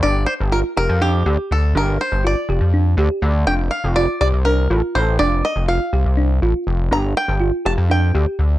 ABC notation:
X:1
M:7/8
L:1/16
Q:1/4=122
K:Gm
V:1 name="Five-string banjo"
d2 c2 B2 B2 G4 A2 | B2 c2 d8 z2 | g2 f2 d2 d2 B4 c2 | d2 e2 f8 z2 |
b2 g4 a2 g6 |]
V:2 name="Synth arpeggio sound"
D4 F2 G2 D2 G4 | D4 F2 G2 D2 G4 | D4 F2 G2 D2 F4 | D4 F2 G2 D2 F4 |
D4 F2 G2 D2 G4 |]
V:3 name="Analog synth bass" clef=bass
G,,,2 z G,,,2 z F,,, F,,3 D,, z D,,2 | G,,,2 z G,,,2 z F,,, F,,3 D,, z D,,2 | F,,,2 z F,,,2 z C,, C,,3 A,,, z A,,,2 | F,,,2 z F,,,2 z C,, C,,3 A,,, z F,,,2 |
G,,,2 z G,,,2 z F,,, F,,3 D,, z D,,2 |]